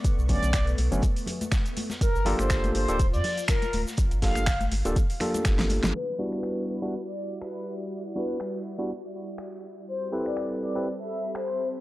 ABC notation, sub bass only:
X:1
M:4/4
L:1/16
Q:"Swing 16ths" 1/4=122
K:Em
V:1 name="Sub bass" clef=bass
z B,,,2 B,,,3 B,,, F,,, z8 | z G,,,2 G,,,3 G,,, D,,,2 G,, z4 D,,, z | z G,,,2 G,,,3 G,,, D,,, z4 G,,,3 G,,, | z16 |
z16 | z16 |]